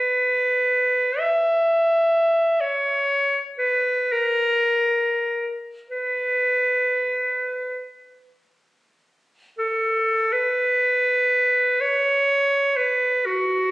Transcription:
clarinet
Already playing: B4
1.19 E5
2.60 C#5
3.59 B4
4.12 A#4
5.90 B4
9.58 A4
10.33 B4
11.81 C#5
12.77 B4
13.26 F#4

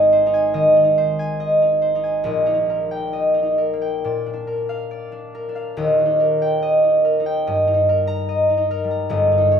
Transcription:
harp
Already playing: G#1 G#2 D#4 C5 D#5 G#5
0.12 C5
0.26 D#4
0.34 G#5
0.54 D#3 D#5
0.76 D#4
0.83 D#4
0.98 C5
1.19 G#5
1.40 D#5
1.62 D#4
1.82 C5
1.95 D#4
2.03 G#5
2.24 A#1 A#2 D#5
2.46 D#4
2.54 D#4
2.70 A#4
2.91 G5
3.13 D#5
3.34 D#4
3.43 D#4
3.58 A#4
3.73 A#3
3.82 G5
4.04 A#2 D5
4.26 D4
4.33 D4
4.47 A#4
4.69 F5
4.91 D5
5.12 D4
5.35 A#4
5.49 D4
5.55 F5
5.77 D#1 D#2 D#5
5.99 D#4
6.05 D#4
6.20 A#4
6.42 G5
6.62 D#5
6.84 D#4
7.05 A#4
7.20 D#4
7.26 G5
7.47 G2 D#5
7.67 D#4
7.74 D#4
7.89 A#4
8.07 A#5
8.29 D#5
8.50 D#4
8.57 D#4
8.71 A#4
8.84 G3
8.91 A#5
9.09 G1 G2 D#5
9.32 D#4
9.38 D#4
9.51 C#5

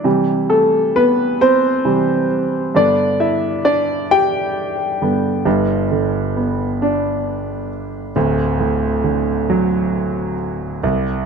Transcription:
grand piano
0.04 C3 E3 G3
0.50 A3 A4
0.96 B3 B4
1.41 C4 C5
1.85 C3 E3 G3
2.75 G2 D3 B3 D4 D5
3.20 E4 E5
3.65 D4 D5
4.11 G4 G5
5.02 G2 D3 B3
5.45 G1 G2
5.91 D3
6.37 B3
6.82 D4
8.16 D1 D2
8.60 A2
9.04 D3
9.50 F#3
10.83 C2

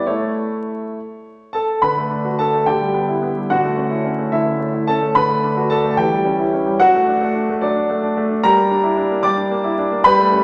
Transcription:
grand piano
0.06 A3 E4 C#5
1.53 A4 A5
1.82 D3 B4 B5
1.97 A3
2.11 D4
2.25 F#4
2.39 D4 A4 A5
2.53 A3
2.66 D3 G4 G5
2.81 G3
2.94 B3
3.08 E4
3.22 B3
3.37 G3
3.50 D3 F#4 F#5
3.63 A3
3.77 C#4
3.90 E4
4.05 C#4
4.18 A3
4.32 D3 E4 E5
4.46 C#4
4.60 A3
4.74 E4
4.87 C#4 A4 A5
5.02 A3
5.15 D3 B4 B5
5.28 A3
5.42 D4
5.57 F#4
5.70 D4 A4 A5
5.84 A3
5.91 A5
5.97 E3 G4 G5
6.12 G3
6.25 C#4
6.39 E4
6.53 C#4
6.66 G3
6.80 F#3 F#4 F#5
6.94 A3
7.07 D4
7.21 A3
7.35 D4
7.49 A3
7.61 F#3 D4 D5
7.75 D4
7.90 A3
8.03 D4
8.17 A3
8.30 D4
8.43 G3 A#4 A#5
8.57 A#3
8.71 D4
8.84 E4
8.97 D4
9.10 A#3
9.23 G3 D5 D6
9.36 D4
9.51 A#3
9.64 E4
9.78 D4
9.91 A#3
10.04 G3 B4 B5
10.18 A3
10.32 C#4

